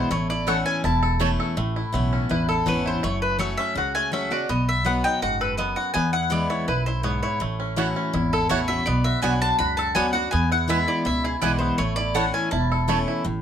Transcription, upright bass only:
0, 0, Header, 1, 2, 480
1, 0, Start_track
1, 0, Key_signature, 3, "major"
1, 0, Tempo, 364964
1, 139, Time_signature, 4, 2, 24, 8
1, 17647, End_track
2, 0, Start_track
2, 0, Title_t, "Upright bass"
2, 0, Program_c, 0, 32
2, 143, Note_on_c, 0, 33, 98
2, 816, Note_off_c, 0, 33, 0
2, 1103, Note_on_c, 0, 28, 91
2, 1776, Note_off_c, 0, 28, 0
2, 2057, Note_on_c, 0, 33, 98
2, 2395, Note_off_c, 0, 33, 0
2, 2547, Note_on_c, 0, 35, 92
2, 2952, Note_off_c, 0, 35, 0
2, 3023, Note_on_c, 0, 33, 90
2, 3430, Note_off_c, 0, 33, 0
2, 3510, Note_on_c, 0, 32, 85
2, 3914, Note_off_c, 0, 32, 0
2, 3993, Note_on_c, 0, 30, 100
2, 4663, Note_off_c, 0, 30, 0
2, 4948, Note_on_c, 0, 37, 80
2, 5620, Note_off_c, 0, 37, 0
2, 5912, Note_on_c, 0, 35, 98
2, 6582, Note_off_c, 0, 35, 0
2, 6872, Note_on_c, 0, 30, 91
2, 7542, Note_off_c, 0, 30, 0
2, 7828, Note_on_c, 0, 40, 98
2, 8500, Note_off_c, 0, 40, 0
2, 8783, Note_on_c, 0, 35, 85
2, 9457, Note_off_c, 0, 35, 0
2, 9742, Note_on_c, 0, 33, 98
2, 10416, Note_off_c, 0, 33, 0
2, 10701, Note_on_c, 0, 32, 88
2, 11109, Note_off_c, 0, 32, 0
2, 11182, Note_on_c, 0, 33, 77
2, 11589, Note_off_c, 0, 33, 0
2, 11665, Note_on_c, 0, 35, 98
2, 12001, Note_off_c, 0, 35, 0
2, 12142, Note_on_c, 0, 35, 92
2, 12549, Note_off_c, 0, 35, 0
2, 12623, Note_on_c, 0, 37, 84
2, 13030, Note_off_c, 0, 37, 0
2, 13109, Note_on_c, 0, 38, 84
2, 13513, Note_off_c, 0, 38, 0
2, 13593, Note_on_c, 0, 40, 105
2, 14262, Note_off_c, 0, 40, 0
2, 14538, Note_on_c, 0, 37, 91
2, 14946, Note_off_c, 0, 37, 0
2, 15019, Note_on_c, 0, 35, 85
2, 15427, Note_off_c, 0, 35, 0
2, 15502, Note_on_c, 0, 33, 100
2, 16175, Note_off_c, 0, 33, 0
2, 16471, Note_on_c, 0, 28, 94
2, 17141, Note_off_c, 0, 28, 0
2, 17420, Note_on_c, 0, 33, 100
2, 17647, Note_off_c, 0, 33, 0
2, 17647, End_track
0, 0, End_of_file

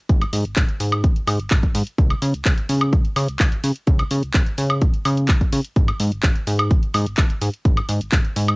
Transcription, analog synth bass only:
0, 0, Header, 1, 2, 480
1, 0, Start_track
1, 0, Tempo, 472441
1, 96, Time_signature, 4, 2, 24, 8
1, 8696, End_track
2, 0, Start_track
2, 0, Title_t, "Analog synth bass"
2, 0, Program_c, 0, 38
2, 95, Note_on_c, 0, 32, 98
2, 255, Note_off_c, 0, 32, 0
2, 334, Note_on_c, 0, 44, 85
2, 452, Note_off_c, 0, 44, 0
2, 458, Note_on_c, 0, 32, 42
2, 552, Note_off_c, 0, 32, 0
2, 576, Note_on_c, 0, 32, 104
2, 657, Note_off_c, 0, 32, 0
2, 814, Note_on_c, 0, 44, 84
2, 1055, Note_on_c, 0, 32, 92
2, 1070, Note_off_c, 0, 44, 0
2, 1136, Note_off_c, 0, 32, 0
2, 1293, Note_on_c, 0, 44, 91
2, 1411, Note_off_c, 0, 44, 0
2, 1417, Note_on_c, 0, 32, 41
2, 1512, Note_off_c, 0, 32, 0
2, 1534, Note_on_c, 0, 32, 94
2, 1616, Note_off_c, 0, 32, 0
2, 1775, Note_on_c, 0, 44, 88
2, 1856, Note_off_c, 0, 44, 0
2, 2015, Note_on_c, 0, 37, 96
2, 2175, Note_off_c, 0, 37, 0
2, 2255, Note_on_c, 0, 49, 85
2, 2372, Note_off_c, 0, 49, 0
2, 2378, Note_on_c, 0, 37, 43
2, 2472, Note_off_c, 0, 37, 0
2, 2494, Note_on_c, 0, 37, 100
2, 2576, Note_off_c, 0, 37, 0
2, 2736, Note_on_c, 0, 49, 84
2, 2975, Note_on_c, 0, 37, 94
2, 2990, Note_off_c, 0, 49, 0
2, 3056, Note_off_c, 0, 37, 0
2, 3214, Note_on_c, 0, 49, 92
2, 3330, Note_off_c, 0, 49, 0
2, 3336, Note_on_c, 0, 37, 41
2, 3431, Note_off_c, 0, 37, 0
2, 3454, Note_on_c, 0, 37, 95
2, 3536, Note_off_c, 0, 37, 0
2, 3695, Note_on_c, 0, 49, 87
2, 3776, Note_off_c, 0, 49, 0
2, 3935, Note_on_c, 0, 37, 99
2, 4096, Note_off_c, 0, 37, 0
2, 4175, Note_on_c, 0, 49, 86
2, 4291, Note_off_c, 0, 49, 0
2, 4297, Note_on_c, 0, 37, 42
2, 4391, Note_off_c, 0, 37, 0
2, 4415, Note_on_c, 0, 37, 105
2, 4496, Note_off_c, 0, 37, 0
2, 4655, Note_on_c, 0, 49, 86
2, 4895, Note_on_c, 0, 37, 94
2, 4911, Note_off_c, 0, 49, 0
2, 4976, Note_off_c, 0, 37, 0
2, 5134, Note_on_c, 0, 49, 91
2, 5375, Note_on_c, 0, 37, 82
2, 5390, Note_off_c, 0, 49, 0
2, 5456, Note_off_c, 0, 37, 0
2, 5614, Note_on_c, 0, 49, 78
2, 5696, Note_off_c, 0, 49, 0
2, 5854, Note_on_c, 0, 32, 98
2, 6015, Note_off_c, 0, 32, 0
2, 6095, Note_on_c, 0, 44, 85
2, 6212, Note_off_c, 0, 44, 0
2, 6218, Note_on_c, 0, 32, 42
2, 6312, Note_off_c, 0, 32, 0
2, 6334, Note_on_c, 0, 32, 104
2, 6416, Note_off_c, 0, 32, 0
2, 6576, Note_on_c, 0, 44, 87
2, 6815, Note_on_c, 0, 32, 95
2, 6830, Note_off_c, 0, 44, 0
2, 6896, Note_off_c, 0, 32, 0
2, 7055, Note_on_c, 0, 44, 91
2, 7173, Note_off_c, 0, 44, 0
2, 7179, Note_on_c, 0, 32, 42
2, 7272, Note_off_c, 0, 32, 0
2, 7295, Note_on_c, 0, 32, 95
2, 7376, Note_off_c, 0, 32, 0
2, 7535, Note_on_c, 0, 44, 88
2, 7616, Note_off_c, 0, 44, 0
2, 7774, Note_on_c, 0, 32, 98
2, 7935, Note_off_c, 0, 32, 0
2, 8014, Note_on_c, 0, 44, 84
2, 8131, Note_off_c, 0, 44, 0
2, 8137, Note_on_c, 0, 32, 43
2, 8231, Note_off_c, 0, 32, 0
2, 8255, Note_on_c, 0, 32, 102
2, 8336, Note_off_c, 0, 32, 0
2, 8496, Note_on_c, 0, 44, 88
2, 8696, Note_off_c, 0, 44, 0
2, 8696, End_track
0, 0, End_of_file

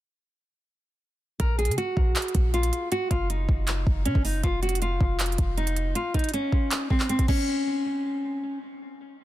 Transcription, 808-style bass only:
0, 0, Header, 1, 2, 480
1, 0, Start_track
1, 0, Key_signature, -5, "minor"
1, 0, Tempo, 379747
1, 1767, Time_signature, 4, 2, 24, 8
1, 11679, End_track
2, 0, Start_track
2, 0, Title_t, "808-style bass"
2, 0, Program_c, 0, 38
2, 1767, Note_on_c, 0, 34, 110
2, 2127, Note_on_c, 0, 49, 102
2, 2146, Note_off_c, 0, 34, 0
2, 2241, Note_off_c, 0, 49, 0
2, 2487, Note_on_c, 0, 34, 107
2, 2718, Note_off_c, 0, 34, 0
2, 2966, Note_on_c, 0, 34, 106
2, 3428, Note_off_c, 0, 34, 0
2, 3927, Note_on_c, 0, 30, 106
2, 4388, Note_off_c, 0, 30, 0
2, 4407, Note_on_c, 0, 30, 104
2, 4868, Note_off_c, 0, 30, 0
2, 4887, Note_on_c, 0, 30, 112
2, 5127, Note_on_c, 0, 49, 101
2, 5146, Note_off_c, 0, 30, 0
2, 5241, Note_off_c, 0, 49, 0
2, 5247, Note_on_c, 0, 30, 98
2, 5593, Note_off_c, 0, 30, 0
2, 5607, Note_on_c, 0, 29, 111
2, 6298, Note_off_c, 0, 29, 0
2, 6327, Note_on_c, 0, 29, 102
2, 6788, Note_off_c, 0, 29, 0
2, 6807, Note_on_c, 0, 29, 109
2, 7498, Note_off_c, 0, 29, 0
2, 11679, End_track
0, 0, End_of_file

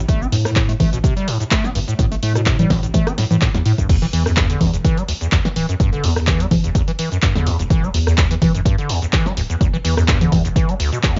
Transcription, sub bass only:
0, 0, Header, 1, 2, 480
1, 0, Start_track
1, 0, Key_signature, 1, "minor"
1, 0, Tempo, 476190
1, 86, Time_signature, 4, 2, 24, 8
1, 11285, End_track
2, 0, Start_track
2, 0, Title_t, "Sub bass"
2, 0, Program_c, 0, 38
2, 85, Note_on_c, 0, 33, 103
2, 263, Note_off_c, 0, 33, 0
2, 325, Note_on_c, 0, 45, 83
2, 755, Note_off_c, 0, 45, 0
2, 805, Note_on_c, 0, 33, 92
2, 898, Note_off_c, 0, 33, 0
2, 933, Note_on_c, 0, 33, 91
2, 1014, Note_off_c, 0, 33, 0
2, 1765, Note_on_c, 0, 31, 93
2, 1858, Note_off_c, 0, 31, 0
2, 2005, Note_on_c, 0, 33, 97
2, 2183, Note_off_c, 0, 33, 0
2, 2245, Note_on_c, 0, 45, 86
2, 2675, Note_off_c, 0, 45, 0
2, 2725, Note_on_c, 0, 33, 94
2, 2817, Note_off_c, 0, 33, 0
2, 2852, Note_on_c, 0, 33, 91
2, 2933, Note_off_c, 0, 33, 0
2, 3573, Note_on_c, 0, 40, 88
2, 3654, Note_off_c, 0, 40, 0
2, 3684, Note_on_c, 0, 45, 86
2, 3777, Note_off_c, 0, 45, 0
2, 3813, Note_on_c, 0, 36, 93
2, 3894, Note_off_c, 0, 36, 0
2, 3925, Note_on_c, 0, 28, 102
2, 4103, Note_off_c, 0, 28, 0
2, 4165, Note_on_c, 0, 40, 83
2, 4595, Note_off_c, 0, 40, 0
2, 4645, Note_on_c, 0, 28, 90
2, 4738, Note_off_c, 0, 28, 0
2, 4773, Note_on_c, 0, 28, 91
2, 4854, Note_off_c, 0, 28, 0
2, 5605, Note_on_c, 0, 26, 92
2, 5698, Note_off_c, 0, 26, 0
2, 5845, Note_on_c, 0, 28, 104
2, 6023, Note_off_c, 0, 28, 0
2, 6086, Note_on_c, 0, 40, 87
2, 6516, Note_off_c, 0, 40, 0
2, 6565, Note_on_c, 0, 28, 88
2, 6658, Note_off_c, 0, 28, 0
2, 6694, Note_on_c, 0, 28, 94
2, 6774, Note_off_c, 0, 28, 0
2, 7414, Note_on_c, 0, 40, 83
2, 7582, Note_off_c, 0, 40, 0
2, 7654, Note_on_c, 0, 28, 107
2, 7734, Note_off_c, 0, 28, 0
2, 7765, Note_on_c, 0, 28, 99
2, 7943, Note_off_c, 0, 28, 0
2, 8005, Note_on_c, 0, 40, 81
2, 8435, Note_off_c, 0, 40, 0
2, 8485, Note_on_c, 0, 28, 89
2, 8578, Note_off_c, 0, 28, 0
2, 8613, Note_on_c, 0, 28, 93
2, 8694, Note_off_c, 0, 28, 0
2, 9444, Note_on_c, 0, 26, 95
2, 9537, Note_off_c, 0, 26, 0
2, 9685, Note_on_c, 0, 28, 98
2, 9863, Note_off_c, 0, 28, 0
2, 9926, Note_on_c, 0, 40, 81
2, 10355, Note_off_c, 0, 40, 0
2, 10405, Note_on_c, 0, 28, 92
2, 10498, Note_off_c, 0, 28, 0
2, 10534, Note_on_c, 0, 28, 97
2, 10614, Note_off_c, 0, 28, 0
2, 11254, Note_on_c, 0, 35, 90
2, 11285, Note_off_c, 0, 35, 0
2, 11285, End_track
0, 0, End_of_file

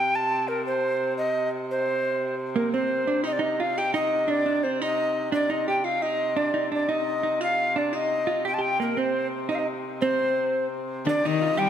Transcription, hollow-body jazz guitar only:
0, 0, Header, 1, 2, 480
1, 0, Start_track
1, 0, Key_signature, -3, "minor"
1, 0, Tempo, 347222
1, 886, Time_signature, 6, 3, 24, 8
1, 16169, End_track
2, 0, Start_track
2, 0, Title_t, "Hollow-body jazz guitar"
2, 0, Program_c, 0, 26
2, 3534, Note_on_c, 0, 58, 60
2, 3778, Note_off_c, 0, 58, 0
2, 3785, Note_on_c, 0, 60, 68
2, 4245, Note_off_c, 0, 60, 0
2, 4250, Note_on_c, 0, 62, 67
2, 4474, Note_off_c, 0, 62, 0
2, 4474, Note_on_c, 0, 63, 80
2, 4578, Note_off_c, 0, 63, 0
2, 4688, Note_on_c, 0, 63, 70
2, 4975, Note_on_c, 0, 65, 77
2, 4980, Note_off_c, 0, 63, 0
2, 5220, Note_off_c, 0, 65, 0
2, 5220, Note_on_c, 0, 67, 77
2, 5446, Note_on_c, 0, 63, 82
2, 5455, Note_off_c, 0, 67, 0
2, 5908, Note_off_c, 0, 63, 0
2, 5914, Note_on_c, 0, 62, 76
2, 6147, Note_off_c, 0, 62, 0
2, 6164, Note_on_c, 0, 62, 62
2, 6415, Note_off_c, 0, 62, 0
2, 6415, Note_on_c, 0, 60, 70
2, 6658, Note_off_c, 0, 60, 0
2, 6658, Note_on_c, 0, 63, 72
2, 7352, Note_off_c, 0, 63, 0
2, 7358, Note_on_c, 0, 62, 80
2, 7592, Note_off_c, 0, 62, 0
2, 7598, Note_on_c, 0, 63, 70
2, 7851, Note_off_c, 0, 63, 0
2, 7851, Note_on_c, 0, 67, 67
2, 8072, Note_off_c, 0, 67, 0
2, 8072, Note_on_c, 0, 65, 72
2, 8324, Note_off_c, 0, 65, 0
2, 8324, Note_on_c, 0, 63, 79
2, 8793, Note_off_c, 0, 63, 0
2, 8799, Note_on_c, 0, 62, 69
2, 9033, Note_off_c, 0, 62, 0
2, 9039, Note_on_c, 0, 63, 63
2, 9280, Note_off_c, 0, 63, 0
2, 9286, Note_on_c, 0, 62, 63
2, 9511, Note_off_c, 0, 62, 0
2, 9520, Note_on_c, 0, 63, 73
2, 9982, Note_off_c, 0, 63, 0
2, 9999, Note_on_c, 0, 63, 62
2, 10241, Note_off_c, 0, 63, 0
2, 10241, Note_on_c, 0, 65, 72
2, 10722, Note_off_c, 0, 65, 0
2, 10727, Note_on_c, 0, 62, 66
2, 10960, Note_off_c, 0, 62, 0
2, 10960, Note_on_c, 0, 63, 67
2, 11427, Note_off_c, 0, 63, 0
2, 11432, Note_on_c, 0, 65, 59
2, 11681, Note_on_c, 0, 67, 78
2, 11689, Note_off_c, 0, 65, 0
2, 11775, Note_off_c, 0, 67, 0
2, 11868, Note_on_c, 0, 67, 66
2, 12142, Note_off_c, 0, 67, 0
2, 12162, Note_on_c, 0, 58, 59
2, 12397, Note_off_c, 0, 58, 0
2, 12402, Note_on_c, 0, 60, 56
2, 13117, Note_on_c, 0, 63, 67
2, 13148, Note_off_c, 0, 60, 0
2, 13346, Note_off_c, 0, 63, 0
2, 13854, Note_on_c, 0, 60, 76
2, 14756, Note_off_c, 0, 60, 0
2, 15301, Note_on_c, 0, 62, 71
2, 15542, Note_off_c, 0, 62, 0
2, 15556, Note_on_c, 0, 63, 78
2, 15777, Note_off_c, 0, 63, 0
2, 15783, Note_on_c, 0, 65, 64
2, 15999, Note_on_c, 0, 67, 78
2, 16023, Note_off_c, 0, 65, 0
2, 16169, Note_off_c, 0, 67, 0
2, 16169, End_track
0, 0, End_of_file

